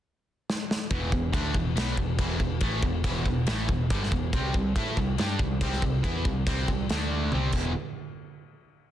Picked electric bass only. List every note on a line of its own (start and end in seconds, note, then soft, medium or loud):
0.91 1.11 E1 loud
1.12 1.32 E1 medium
1.34 1.54 D2 medium
1.55 1.75 E1 medium
1.76 1.96 B1 medium
1.97 2.18 E1 medium
2.19 2.39 E1 loud
2.39 2.60 E1 medium
2.61 2.82 A1 loud
2.83 3.03 E1 medium
3.04 3.24 E1 loud
3.26 3.46 E1 medium
3.47 3.67 A1 medium
3.69 3.89 E1 medium
3.90 4.10 G1 medium
4.12 4.32 E1 medium
4.34 4.53 C2 loud
4.55 4.75 C2 medium
4.76 4.96 A2 loud
4.97 5.17 C2 medium
5.19 5.39 G2 medium
5.40 5.60 C2 medium
5.61 5.81 C2 medium
5.82 6.02 C2 medium
6.04 6.24 E2 medium
6.25 6.46 C2 medium
6.46 6.67 C2 medium
6.68 6.88 C2 medium
6.90 7.30 D2 medium
7.33 7.53 C2 loud
7.53 7.73 E1 medium